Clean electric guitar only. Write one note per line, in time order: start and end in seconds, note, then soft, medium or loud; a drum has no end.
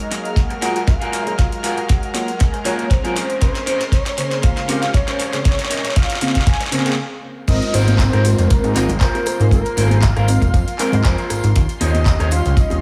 0.50 muted clean electric guitar stroke medium
0.61 0.81 F4 loud
0.61 0.82 F#4 medium
0.61 0.82 G#4 loud
0.61 0.82 A#4 loud
1.01 1.32 F4 medium
1.01 1.33 F#4 medium
1.01 1.33 G#4 medium
1.01 1.33 A#4 medium
1.63 1.77 F4 loud
1.63 1.77 F#4 loud
1.63 1.78 G#4 loud
1.63 1.78 A#4 loud
1.89 muted clean electric guitar stroke soft
2.53 muted clean electric guitar stroke medium
2.65 2.85 F4 loud
2.65 2.85 F#4 loud
2.65 2.85 G#4 loud
2.65 2.85 A#4 loud
3.04 3.16 F4 medium
3.04 3.16 F#4 medium
3.04 3.15 G#4 medium
3.04 3.15 A#4 medium
3.15 3.58 C#4 loud
3.15 3.58 G#4 medium
3.15 3.58 A#4 medium
3.15 3.58 C5 medium
3.66 3.80 C#4 loud
3.66 3.81 G#4 loud
3.66 3.81 A#4 loud
3.66 3.81 C5 loud
3.92 muted clean electric guitar stroke soft
4.57 muted clean electric guitar stroke medium
4.68 4.88 C#4 loud
4.68 4.88 G#4 loud
4.68 4.89 A#4 loud
4.68 4.89 C5 loud
5.07 5.39 C#4 medium
5.07 5.39 G#4 medium
5.07 5.39 A#4 medium
5.07 5.40 C5 loud
5.70 5.84 C#4 loud
5.70 5.84 G#4 loud
5.70 5.84 A#4 loud
5.70 5.85 D#5 loud
5.96 muted clean electric guitar stroke soft
6.60 muted clean electric guitar stroke medium
6.72 6.92 C#4 loud
6.72 6.92 G#4 loud
6.72 6.92 A#4 loud
6.72 6.92 C5 loud
7.73 7.93 F4 loud
7.73 7.94 G#4 loud
7.73 7.94 A#4 medium
7.73 7.94 C5 loud
8.13 8.25 F4 medium
8.13 8.25 G#4 medium
8.13 8.25 A#4 medium
8.13 8.25 C5 loud
8.38 muted clean electric guitar stroke soft
8.75 8.89 F4 loud
8.75 8.89 G#4 medium
8.75 8.90 A#4 loud
8.75 8.90 D#5 loud
9.00 9.40 F4 medium
9.00 9.40 G#4 medium
9.00 9.40 A#4 medium
9.00 9.41 C5 loud
9.77 9.97 F4 loud
9.77 9.97 G#4 medium
9.77 9.97 A#4 loud
9.77 9.97 C5 loud
10.16 10.28 F4 medium
10.16 10.28 G#4 medium
10.16 10.29 A#4 medium
10.16 10.29 C5 medium
10.42 muted clean electric guitar stroke soft
10.79 10.93 F4 loud
10.79 10.93 G#4 medium
10.79 10.93 A#4 loud
10.79 10.93 C5 loud
11.04 11.44 F4 medium
11.04 11.44 G#4 medium
11.04 11.44 A#4 medium
11.04 11.44 C5 medium
11.81 12.00 F4 loud
11.81 12.01 G4 loud
11.81 12.01 C5 loud
11.81 12.01 C#5 loud
12.20 12.32 F4 medium
12.20 12.32 G4 medium
12.20 12.32 C5 medium
12.20 12.32 C#5 loud
12.45 muted clean electric guitar stroke soft